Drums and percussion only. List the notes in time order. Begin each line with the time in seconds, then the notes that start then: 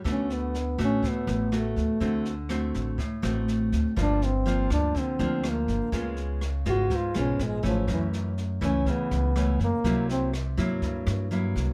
0.05 kick, cross-stick, snare
0.30 snare
0.54 snare
0.79 kick, cross-stick, snare
1.03 kick, snare
1.28 snare
1.52 cross-stick, snare
1.76 kick, snare
2.01 kick, snare
2.25 snare
2.49 cross-stick, snare
2.74 kick, snare
2.99 kick, snare
3.23 cross-stick, snare
3.48 snare
3.72 kick, snare
3.97 kick, cross-stick, snare
4.22 snare
4.46 snare
4.70 kick, cross-stick, snare
4.95 kick, snare
5.19 snare
5.44 cross-stick, snare
5.68 kick, snare
5.92 kick, snare
6.17 snare
6.41 cross-stick, snare
6.65 kick, snare
6.90 kick, snare
7.14 cross-stick, snare
7.39 snare
7.64 kick, snare
7.88 kick, cross-stick, snare
8.13 snare
8.38 snare
8.62 kick, cross-stick, snare
8.86 kick, snare
9.11 snare
9.36 cross-stick, snare
9.60 kick, snare
9.84 kick, snare
10.09 snare
10.34 cross-stick, snare
10.58 kick, snare
10.82 kick, snare
11.07 cross-stick, snare
11.31 snare
11.56 kick, snare